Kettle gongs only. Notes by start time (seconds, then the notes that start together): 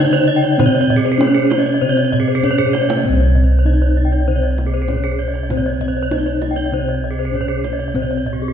Already playing: C3
0.58 C4
1.20 C#4
1.81 C3
2.43 C#4
3.04 C4
3.09 C2
3.66 C#4
4.88 C#4
5.50 C4
6.12 C#4
6.72 C3
7.33 C#4
7.94 C4